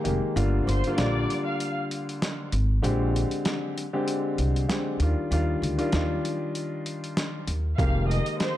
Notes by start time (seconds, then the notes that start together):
0.04 F1 D#3 G#3 A#3 G4, closed hi-hat
0.36 G1 D3 G3 A#3 F4, closed hi-hat
0.67 G1 C5 C6, closed hi-hat
0.84 D3 G3 A#3 F4, closed hi-hat
0.96 A#1 D3 G3 A#3 F4 D5 D6, snare, closed hi-hat
1.30 closed hi-hat
1.45 F5 F6
1.60 closed hi-hat
1.91 closed hi-hat
2.09 closed hi-hat
2.22 snare, closed hi-hat
2.52 G#1, closed hi-hat
2.82 A#1 D3 G#3 C4 G4, closed hi-hat
3.16 closed hi-hat
3.31 closed hi-hat
3.45 snare, closed hi-hat
3.78 closed hi-hat
3.93 D3 G#3 C4 G4
4.08 closed hi-hat
4.38 C2, closed hi-hat
4.56 closed hi-hat
4.68 D3 G#3 C4 G4, snare, closed hi-hat
5.00 D#2 D#3 G3 D4 F4, closed hi-hat
5.31 D#2 D#3 G3 D4 F4, closed hi-hat
5.62 D2, closed hi-hat
5.78 D#3 G3 D4 F4, closed hi-hat
5.92 D#2 D#3 G3 D4 F4, snare, closed hi-hat
6.25 closed hi-hat
6.55 closed hi-hat
6.86 closed hi-hat
7.04 closed hi-hat
7.17 snare, closed hi-hat
7.47 D#2, closed hi-hat
7.77 F1 D#3 G#3 A#3 G4 F5 F6, kick, closed hi-hat
8.09 D#5 D#6, closed hi-hat
8.26 closed hi-hat
8.40 C5 C6, snare, closed hi-hat